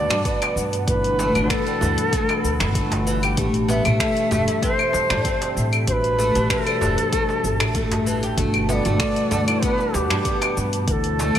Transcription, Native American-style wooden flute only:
Already playing: D5
0.87 B4
1.50 A4
3.69 E5
4.63 C5
5.88 C5
5.92 B4
6.50 A4
8.69 E5
8.73 D5
9.63 B4
9.94 G4
10.87 A4 B4

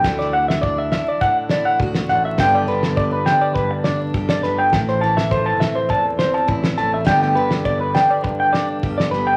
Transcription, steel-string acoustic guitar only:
0.04 A3 D4 E4, muted steel-string acoustic guitar stroke
0.64 D4
0.93 E4
1.23 A2
1.52 E4
1.82 F#4
2.11 D4
2.40 G2 D3 B3 D4 G4
2.68 D3
2.99 B3
3.29 D4
3.57 G2
3.87 D4
4.16 G4
4.45 B3
4.74 A2
5.04 E3
5.32 A3
5.62 C4
5.89 E2
6.19 C4
6.48 E4
6.78 A3
7.05 G2 D3 B3 D4 G4
7.37 D3
7.66 B3
7.94 D4
8.24 G2
8.55 D4
8.84 G4
9.14 B3

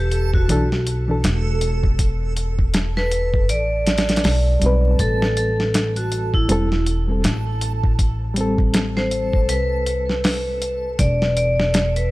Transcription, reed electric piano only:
0.48 E3 D4 A4
1.08 E3 D4 A4
4.59 G3 C4
4.66 B4
6.49 G3 C4 A4
7.08 G3 C4 A4
8.34 G3 C4
8.41 A4

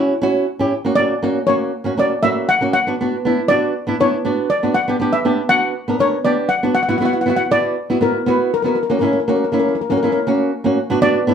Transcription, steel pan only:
0.95 D5
1.47 C#5
1.99 D5
2.23 E5
2.49 F#5
2.73 F#5
3.48 D5
4.01 C#5
4.50 D5
4.74 F#5
5.13 E5
5.49 F#5
6.00 C#5
6.25 D5
6.49 F#5
6.75 F#5
6.83 F#5
6.89 F#5
6.98 F#5
7.05 F#5
7.13 F#5
7.21 F#5
7.30 F#5
7.36 F#5
7.52 D5
8.02 A#4
8.28 B4
8.54 A#4
8.62 A#4
8.67 A#4
8.75 A#4
8.83 A#4
8.90 A#4
8.99 A#4
9.05 A#4
9.13 A#4
9.20 A#4
9.28 A#4
9.36 A#4
9.44 A#4
9.52 A#4
9.59 A#4
9.69 A#4
9.75 A#4
9.81 A#4
9.90 A#4
9.97 A#4
10.05 A#4
10.12 A#4
11.02 D5

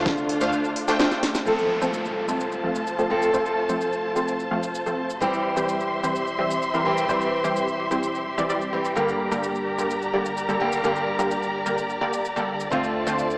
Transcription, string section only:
Already playing: D3 A3 D4 F4
1.47 F4 A4 C5 A5
5.22 G4 E5 C6
8.96 A#4 D5 A#5
12.71 F4 C5 A5

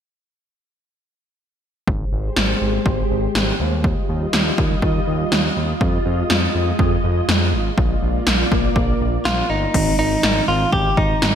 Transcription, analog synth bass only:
1.87 G#1
2.12 G#1
2.37 G#1
2.61 G#1
2.86 G#1
3.10 G#1
3.35 G#1
3.60 D#2
4.09 D#2
4.33 D#2
4.58 D#2
4.82 D#2
5.07 D#2
5.32 D#2
5.56 D#2
5.81 F2
6.06 F2
6.30 F2
6.55 F2
6.79 F2
7.04 F2
7.28 F2
7.53 G#1
7.78 A#1
8.02 A#1
8.27 A#1
8.52 A#1
8.76 A#1
9.01 A#1
9.25 A#1
9.50 G1
9.74 G#1
9.99 G#1
10.24 G#1
10.48 G#1
10.73 G#1
10.97 G#1
11.22 G#1

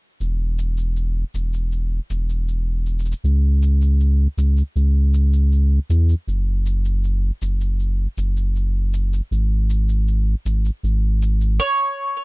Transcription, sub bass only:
0.20 E1
1.34 E1
2.10 E1
3.24 C#2
4.37 C#2
4.76 C#2
5.90 E2
6.27 F#1
7.42 F#1
8.17 F#1
9.31 G#1
10.45 G#1
10.83 G#1

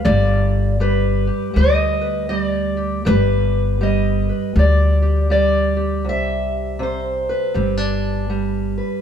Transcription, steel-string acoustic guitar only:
Already playing: F5
0.05 G3 D5
0.80 G3 B4
1.27 G4
1.54 G3 D#5
2.01 B4
2.29 G3 D#5
2.40 D5
2.77 G4
3.05 G3 B4
3.81 G3 D#5
4.29 B4
4.57 G3 D5
5.02 G4
5.30 G3 D5
5.77 G4
6.05 C3
6.09 E5
6.79 C3 C5
7.29 B4
7.54 G3 C4
7.77 D4
8.30 G3
8.78 B4

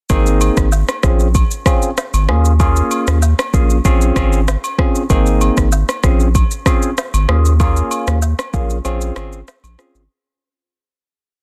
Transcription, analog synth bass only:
0.10 G#1
0.57 G#1
1.03 A#1
2.14 G#1
2.29 D#2
3.07 D#2
3.54 A#1
3.85 A#1
4.16 G#1
5.10 G#1
5.57 G#1
6.04 A#1
7.14 G#1
7.29 D#2
8.07 D#2
8.54 A#1
8.85 A#1
9.16 G#1
9.63 A#1
9.95 G#1

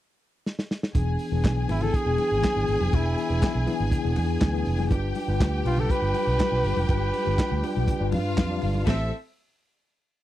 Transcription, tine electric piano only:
0.94 E3 B3 D4 G#4
1.31 E3 B3 D4 G#4
1.69 E3 B3 D4 E4
2.05 E3 B3 D4 G#4
2.55 E3 B3 D4 G#4
2.93 E3 B3 D4 G#4
3.30 E3 B3 D4 G#4
3.66 E3 B3 D4 E4
4.03 E3 B3 D4 G#4
4.53 E3 B3 D4 G#4
4.90 G3 D4 F4 B4
5.27 G3 D4 F4 B4
5.64 G3 D4 F4 B4
6.02 G3 D4 F4
6.51 G3 D4 F4 B4
6.89 G3 D4 F4 B4
7.25 G3 D4 F4 B4
7.63 G3 D4 F4 B4
8.00 G3 D4 F4 B4
8.49 G3 D4 F4 D5
8.87 A3 E4 G4 C5

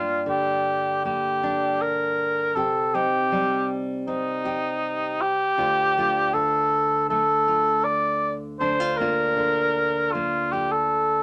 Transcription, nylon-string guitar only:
Already playing: G2 A#3 D4
0.26 D3
1.05 A#3
1.43 D4
2.56 C3 G4
2.94 C4 D#4
3.32 G3
4.07 C4
4.45 G4
5.58 D2 F4
5.97 A3 D4 F4
6.34 D3
7.10 A3
7.48 F4
8.60 D2 D4
8.80 F4
9.00 A#3 D4 F4
9.37 D3
10.15 A#3
10.53 F4

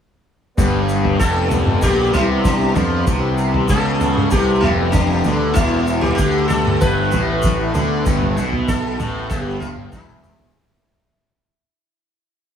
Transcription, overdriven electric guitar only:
0.58 G2
1.20 F2
1.83 A#2
2.13 C3
2.75 F3
3.07 C3
3.69 C#3
4.32 C3
4.63 F2
5.26 D3
5.57 E2
6.20 D3
6.82 G2
7.12 A2
7.74 D3
8.05 G2
8.36 B2
8.99 A2
9.31 G2
9.92 E2

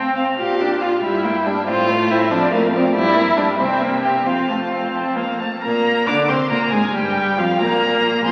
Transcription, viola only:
Already playing: C4
0.17 C4
0.38 F4
0.60 D4
0.82 F4
1.03 G3
1.25 A#3
1.46 G3
1.68 C4
1.88 A3
2.10 C4
2.31 F3
2.52 A3
2.73 F3
2.95 G3
3.15 A#3
3.37 G3
3.59 C4
3.81 A#3
4.04 C4
4.26 C4
4.49 A3
4.71 C4
4.94 C4
5.16 A#3
5.39 A3
5.62 A#3
6.07 D4
6.28 C4
6.50 A#3
6.72 G#3
6.93 G3
7.38 F3
7.61 A#3
8.25 F3

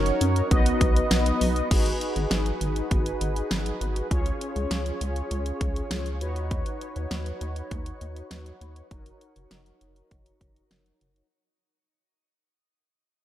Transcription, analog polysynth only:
Already playing: C#4 D#4 F#4 A#4 C#5
0.51 B3 D#4 F#4 B4 D#5
1.71 D#4 F#4 G#4 B4
4.11 C#4 F4 G#4 C#5
6.21 D#4 F#4 B4 C#5
8.91 D#4 F#4 A#4 C#5

